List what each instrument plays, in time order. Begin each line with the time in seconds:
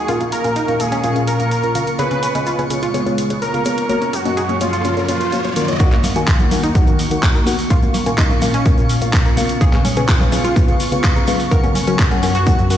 Already playing: ambient pad A#3, analog synth lead G#4, synth texture C#6
0.08 synth stab A#2 C#4 F4 A#4 F5, ambient pad A#2 C#4 F4, synth pluck F4, closed hi-hat, shaker
0.20 synth stab A#2 C#4 F4 A#4 F5, synth pluck A#3, closed hi-hat, shaker
0.32 synth pluck A#3, analog synth lead A#4, closed hi-hat, shaker
0.44 synth stab A#2 C#4 F4 A#4 G#5, synth pluck A#3, closed hi-hat, shaker
0.56 synth pluck D#4, closed hi-hat, shaker
0.68 synth stab A#2 C#4 F4 A#4 F5, synth pluck A#3, closed hi-hat, shaker
0.80 synth stab A#2 C#4 F4 A#4 F5, synth pluck A#3, analog synth lead G#4, closed hi-hat, shaker
0.92 synth pluck C#4, closed hi-hat, shaker
1.04 synth stab A#2 C#4 F4 A#4 F5, closed hi-hat, shaker
1.16 synth stab A#2 C#4 F4 A#4 F5, closed hi-hat, shaker
1.27 analog synth lead A#4, closed hi-hat, shaker
1.40 synth stab A#2 C#4 F4 A#4 F5, closed hi-hat, shaker
1.51 closed hi-hat, shaker
1.63 synth stab A#2 C#4 F4 A#4 A#5, closed hi-hat, shaker
1.75 synth stab C#3 C#4 F4 A#4 F5, closed hi-hat, shaker
1.87 closed hi-hat, shaker
1.99 synth stab C#3 B3 F4 G#4 C#5, ambient pad C#3 G#3 B3, synth pluck G#4, analog synth lead B4, closed hi-hat, riser, shaker
2.11 synth stab C#3 B3 F4 G#4 C#5, synth pluck C#4, closed hi-hat, shaker
2.23 synth pluck C#4, closed hi-hat, shaker
2.35 synth stab C#3 B3 F4 G#4 D#5, synth pluck C#4, closed hi-hat, shaker
2.46 synth pluck F4, closed hi-hat, shaker
2.59 synth stab C#3 B3 F4 G#4 C#5, synth pluck C#4, closed hi-hat, shaker
2.70 synth stab C#3 B3 F4 G#4 C#5, synth pluck C#4, closed hi-hat, shaker
2.83 synth pluck F4, closed hi-hat, shaker
2.94 synth stab C#3 B3 F4 G#4 C#5, closed hi-hat, shaker
3.06 synth stab C#3 B3 F4 G#4 C#5, closed hi-hat, shaker
3.18 closed hi-hat, shaker
3.30 synth stab C#3 B3 F4 G#4 C#5, closed hi-hat, shaker
3.42 analog synth lead A#4, closed hi-hat, shaker
3.54 synth stab C#3 B3 F4 G#4 F5, closed hi-hat, shaker
3.65 synth stab B3 F4 G#4 C#5, closed hi-hat, shaker
3.78 closed hi-hat, shaker
3.89 ambient pad F#2 F#3 A#3 C#4, synth stab A#3 C#4 F#4 C#5, synth pluck A#4, closed hi-hat, shaker
4.02 synth stab A#3 C#4 F#4 C#5, synth pluck C#4, closed hi-hat, shaker
4.13 synth pluck C#4, analog synth lead F#4, closed hi-hat, shaker
4.25 synth stab A#3 C#4 F#4 D#5, synth pluck C#4, closed hi-hat, shaker
4.37 synth pluck G#4, closed hi-hat, shaker
4.49 synth stab A#3 C#4 F#4 C#5, synth pluck C#4, closed hi-hat, shaker
4.61 synth stab A#3 C#4 F#4 C#5, synth pluck C#4, analog synth lead F4, closed hi-hat, shaker
4.73 synth pluck F4, closed hi-hat, shaker
4.84 synth stab A#3 C#4 F#4 C#5, closed hi-hat, shaker
4.97 synth stab A#3 C#4 F#4 C#5, closed hi-hat, shaker
5.08 synth stab A#3 C#4 F#4 C#5, analog synth lead F4, closed hi-hat, shaker
5.21 closed hi-hat, shaker
5.32 synth stab A#3 C#4 F#4 C#5, closed hi-hat, shaker
5.44 synth stab A#3 C#4 F#4 C#5, closed hi-hat, shaker
5.56 synth stab D#3 A#3 C#4 F#4 A#4, closed hi-hat, shaker
5.68 synth stab D#3 A#3 C#4 F#4 C#5, closed hi-hat, shaker
5.80 ambient pad D#2 D#3 A#3 F#4, synth stab D#3 D#4 F#4 A#4 F#5, synth pluck F#4, synth texture C#6, kick, closed hi-hat, shaker
5.92 synth stab D#3 D#4 F#4 A#4 F#5, synth pluck A#3, clap, closed hi-hat, high conga, shaker
6.03 synth pluck A#3, open hi-hat, low conga, shaker
6.16 synth stab D#3 D#4 F#4 A#4 G#5, synth pluck A#3, closed hi-hat, shaker
6.28 synth pluck F4, kick, clap, closed hi-hat, shaker
6.39 synth stab D#3 D#4 F#4 A#4 F#5, synth pluck A#3, closed hi-hat, high conga, low conga, shaker
6.51 synth stab D#3 D#4 F#4 A#4 F#5, synth pluck A#3, open hi-hat, low conga, shaker
6.63 synth pluck D#4, closed hi-hat, shaker
6.75 synth stab D#3 D#4 F#4 A#4 F#5, kick, closed hi-hat, high conga, shaker
6.87 synth stab D#3 D#4 F#4 A#4 F#5, closed hi-hat, shaker
6.99 open hi-hat, shaker
7.11 synth stab D#3 D#4 F#4 A#4 F#5, closed hi-hat, high conga, shaker
7.23 kick, clap, closed hi-hat, shaker
7.35 synth stab D#3 D#4 F#4 A#4 A#5, closed hi-hat, shaker
7.46 synth stab D#4 F#4 A#4 F#5, open hi-hat, high conga, shaker
7.59 open hi-hat, shaker
7.70 synth stab A#2 C#4 F4 A#4 F5, ambient pad A#2 A#3 C#4 F4, synth pluck F4, kick, closed hi-hat, shaker
7.82 synth stab A#2 C#4 F4 A#4 F5, synth pluck A#3, closed hi-hat, high conga, shaker
7.94 synth pluck A#3, open hi-hat, low conga, shaker
8.06 synth stab A#2 C#4 F4 A#4 G#5, synth pluck A#3, closed hi-hat, shaker
8.18 synth pluck D#4, kick, clap, closed hi-hat, shaker
8.29 synth stab A#2 C#4 F4 A#4 F5, synth pluck A#3, closed hi-hat, high conga, low conga, shaker
8.42 synth stab A#2 C#4 F4 A#4 F5, synth pluck A#3, open hi-hat, low conga, shaker
8.54 synth pluck C#4, closed hi-hat, shaker
8.65 synth stab A#2 C#4 F4 A#4 F5, kick, closed hi-hat, high conga, shaker
8.78 synth stab A#2 C#4 F4 A#4 F5, closed hi-hat, shaker
8.89 open hi-hat, shaker
9.02 synth stab A#2 C#4 F4 A#4 F5, closed hi-hat, high conga, shaker
9.13 kick, clap, closed hi-hat, shaker
9.25 synth stab A#2 C#4 F4 A#4 A#5, closed hi-hat, shaker
9.37 synth stab C#3 C#4 F4 A#4 F5, open hi-hat, high conga, shaker
9.49 closed hi-hat, shaker
9.61 synth stab C#3 C#4 G#4 B4 F5, ambient pad C#3 G#3 B3 F4, synth pluck G#4, kick, closed hi-hat, shaker
9.73 synth stab C#3 C#4 G#4 B4 F5, synth pluck C#4, clap, closed hi-hat, high conga, shaker
9.84 synth pluck C#4, open hi-hat, low conga, shaker
9.97 synth stab C#3 C#4 G#4 B4 G#5, synth pluck C#4, closed hi-hat, shaker
10.08 synth pluck F4, kick, clap, closed hi-hat, shaker
10.20 synth stab C#3 C#4 G#4 B4 F5, synth pluck C#4, closed hi-hat, high conga, low conga, shaker
10.32 synth stab C#3 C#4 G#4 B4 F5, synth pluck C#4, open hi-hat, low conga, shaker
10.44 synth pluck F4, closed hi-hat, shaker
10.56 synth stab C#3 C#4 G#4 B4 F5, kick, closed hi-hat, high conga, shaker
10.68 synth stab C#3 C#4 G#4 B4 F5, closed hi-hat, shaker
10.80 open hi-hat, shaker
10.92 synth stab C#3 C#4 G#4 B4 F5, closed hi-hat, high conga, shaker
11.04 kick, clap, closed hi-hat, shaker
11.16 synth stab C#3 C#4 G#4 B4 A#5, closed hi-hat, shaker
11.27 synth stab F#3 C#4 G#4 B4 F5, open hi-hat, high conga, shaker
11.40 open hi-hat, shaker
11.51 ambient pad F#2 A#3 F#4, synth stab F#3 C#4 F#4 A#4 F#5, synth pluck A#4, kick, closed hi-hat, shaker
11.63 synth stab F#3 C#4 F#4 A#4 F#5, synth pluck C#4, closed hi-hat, high conga, shaker
11.75 synth pluck C#4, open hi-hat, low conga, shaker
11.87 synth stab F#3 C#4 F#4 A#4 G#5, synth pluck C#4, closed hi-hat, shaker
11.99 synth pluck G#4, kick, clap, closed hi-hat, shaker
12.11 synth stab F#3 C#4 F#4 A#4 F#5, synth pluck C#4, closed hi-hat, high conga, low conga, shaker
12.23 synth stab F#3 C#4 F#4 A#4 F#5, synth pluck C#4, open hi-hat, low conga, shaker
12.34 synth pluck F#4, closed hi-hat, shaker
12.47 synth stab F#3 C#4 F#4 A#4 F#5, kick, closed hi-hat, high conga, shaker
12.59 synth stab F#3 C#4 F#4 A#4 F#5, closed hi-hat, shaker
12.70 synth stab F#3 C#4 F#4 A#4 F#5, open hi-hat, shaker